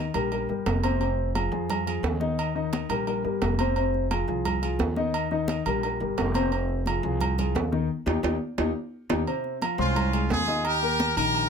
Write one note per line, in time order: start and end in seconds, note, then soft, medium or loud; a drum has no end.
0.14 0.46 A#1 medium
0.14 0.28 G3 medium
0.14 0.29 G4 medium
0.14 0.29 A#4 medium
0.14 high conga soft
0.14 low agogo medium
0.31 0.46 G3 medium
0.31 0.46 G4 medium
0.31 0.46 A#4 medium
0.31 high conga soft
0.31 low agogo medium
0.49 0.65 G1 medium
0.49 0.77 G3 medium
0.49 0.77 G4 medium
0.49 0.78 A#4 medium
0.49 high conga soft
0.66 1.47 F1 loud
0.66 high conga medium
0.66 low timbale medium
0.66 low agogo medium
0.83 0.98 C3 medium
0.83 0.98 C4 medium
0.83 0.98 C5 medium
0.83 high conga medium
0.83 low agogo loud
1.00 1.29 C3 medium
1.00 1.29 C4 medium
1.00 1.29 C5 medium
1.00 high conga soft
1.00 low agogo medium
1.18 high conga soft
1.35 1.49 F3 medium
1.35 1.49 F4 medium
1.35 1.49 G#4 medium
1.35 high conga medium
1.35 low timbale medium
1.35 low agogo loud
1.52 2.00 F2 loud
1.52 1.80 F3 medium
1.52 1.81 F4 medium
1.52 1.81 G#4 medium
1.52 high conga soft
1.70 high conga soft
1.70 low conga medium
1.70 low agogo loud
1.86 2.14 F3 medium
1.86 2.15 F4 medium
1.86 2.15 G#4 medium
1.86 high conga soft
1.86 low agogo medium
2.03 2.84 D#2 loud
2.03 high conga medium
2.03 low timbale medium
2.20 2.49 D#3 medium
2.20 2.49 D#4 loud
2.20 2.49 D#5 medium
2.20 high conga medium
2.38 high conga soft
2.38 low agogo loud
2.55 2.84 D#3 medium
2.55 2.84 D#4 medium
2.55 2.84 D#5 medium
2.55 high conga soft
2.73 high conga loud
2.73 low timbale medium
2.73 low agogo medium
2.89 3.22 A#1 medium
2.89 3.04 G3 medium
2.89 3.04 G4 medium
2.89 3.04 A#4 medium
2.89 high conga soft
2.89 low agogo loud
3.06 3.21 G3 medium
3.06 3.21 G4 medium
3.06 3.21 A#4 medium
3.06 high conga soft
3.06 low agogo medium
3.24 3.41 G1 medium
3.24 3.53 G3 medium
3.24 3.53 G4 medium
3.24 3.53 A#4 medium
3.24 high conga soft
3.42 4.22 F1 loud
3.42 high conga medium
3.42 low timbale medium
3.42 low agogo medium
3.59 3.73 C3 medium
3.59 3.74 C4 medium
3.59 3.74 C5 medium
3.59 high conga medium
3.59 low agogo loud
3.76 4.04 C3 medium
3.76 4.05 C4 medium
3.76 4.05 C5 medium
3.76 high conga soft
3.76 low agogo medium
3.94 high conga soft
4.11 4.25 F3 medium
4.11 4.25 F4 medium
4.11 4.25 G#4 medium
4.11 high conga medium
4.11 low timbale medium
4.11 low agogo loud
4.28 4.76 C2 medium
4.28 4.56 F3 medium
4.28 4.56 F4 medium
4.28 4.56 G#4 medium
4.28 high conga soft
4.45 high conga soft
4.45 low conga medium
4.45 low agogo loud
4.62 4.90 F3 medium
4.62 4.90 F4 medium
4.62 4.90 G#4 medium
4.62 high conga soft
4.62 low agogo medium
4.79 5.60 D#2 loud
4.79 high conga medium
4.79 low timbale medium
4.96 5.25 D#3 medium
4.96 5.25 D#4 loud
4.96 5.25 D#5 loud
4.96 high conga medium
5.14 high conga soft
5.14 low agogo loud
5.31 5.59 D#3 loud
5.31 5.60 D#4 medium
5.31 5.60 D#5 medium
5.31 high conga soft
5.48 high conga loud
5.48 low timbale medium
5.48 low agogo medium
5.66 5.98 A#1 loud
5.66 5.80 G3 medium
5.66 5.80 G4 medium
5.66 5.80 A#4 medium
5.66 high conga soft
5.66 low agogo loud
5.83 5.97 G3 medium
5.83 5.98 G4 medium
5.83 5.98 A#4 medium
5.83 high conga soft
5.83 low agogo medium
6.00 6.16 G1 medium
6.00 6.28 G3 medium
6.00 6.29 G4 medium
6.00 6.29 A#4 medium
6.00 high conga soft
6.17 6.98 F1 medium
6.17 high conga medium
6.17 low timbale medium
6.17 low agogo medium
6.34 6.49 C3 medium
6.34 6.49 C4 medium
6.34 6.49 C5 medium
6.34 high conga medium
6.34 low agogo loud
6.51 6.80 C3 medium
6.51 6.80 C4 medium
6.51 high conga soft
6.51 low agogo medium
6.69 high conga soft
6.86 7.00 F3 medium
6.86 7.00 F4 medium
6.86 7.01 G#4 medium
6.86 high conga medium
6.86 low timbale medium
6.86 low agogo loud
7.03 7.51 C2 loud
7.03 7.32 F3 medium
7.03 7.32 F4 medium
7.03 7.32 G#4 medium
7.03 high conga soft
7.20 high conga soft
7.20 low conga medium
7.20 low agogo loud
7.38 7.66 F3 medium
7.38 7.67 F4 medium
7.38 7.67 G#4 medium
7.38 high conga soft
7.38 low conga medium
7.38 low agogo medium
7.55 7.87 D#2 loud
7.55 high conga medium
7.55 low timbale medium
7.72 7.86 D#3 loud
7.72 7.86 D#4 medium
7.72 7.87 D#5 medium
7.72 high conga medium
8.06 8.19 D#2 loud
8.06 8.17 A#3 medium
8.06 8.17 D#4 loud
8.06 8.17 G4 loud
8.06 high conga loud
8.06 high timbale medium
8.23 8.36 D#2 loud
8.23 8.35 A#3 medium
8.23 8.34 D#4 medium
8.23 8.34 G4 medium
8.23 high conga loud
8.23 high timbale loud
8.58 8.71 D#2 medium
8.58 8.69 A#3 loud
8.58 8.69 D#4 loud
8.58 8.69 G4 loud
8.58 high conga medium
8.58 high timbale medium
9.09 9.23 D#2 medium
9.09 9.21 A#3 loud
9.09 9.21 D#4 medium
9.09 9.21 G4 loud
9.09 high conga loud
9.09 high timbale loud
9.27 9.55 C3 medium
9.27 9.56 C4 medium
9.27 9.56 C5 medium
9.27 high conga soft
9.27 low agogo medium
9.44 high conga soft
9.61 9.76 F3 medium
9.61 9.76 F4 medium
9.61 9.76 F5 medium
9.61 high conga medium
9.61 low timbale medium
9.61 low agogo loud
9.78 10.27 C2 loud
9.78 10.07 G#3 medium
9.78 10.27 C#4 medium
9.78 10.27 F4 medium
9.78 10.07 C5 medium
9.78 10.07 C6 medium
9.78 high conga soft
9.96 high conga soft
9.96 low conga medium
9.96 low agogo loud
10.13 10.41 G#3 medium
10.13 10.41 G#4 medium
10.13 10.42 G#5 medium
10.13 high conga soft
10.13 low agogo medium
10.30 11.11 D#2 loud
10.30 10.63 F4 medium
10.30 10.63 G#4 loud
10.30 high conga medium
10.30 low timbale medium
10.47 10.76 D#4 medium
10.47 10.76 D#5 medium
10.47 10.76 D#6 medium
10.47 high conga medium
10.65 11.17 G4 loud
10.65 11.16 A#4 loud
10.65 high conga soft
10.65 low agogo loud
10.82 11.10 A#3 medium
10.82 11.11 A#4 medium
10.82 11.11 A#5 medium
10.82 high conga soft
11.00 high conga loud
11.00 low timbale medium
11.00 low agogo medium
11.17 11.49 A#1 loud
11.17 11.45 D#3 medium
11.17 11.45 D#4 medium
11.17 11.49 G4 medium
11.17 11.49 A#4 loud
11.17 11.46 D#5 medium
11.17 high conga soft
11.17 low agogo loud
11.34 high conga soft
11.34 low agogo medium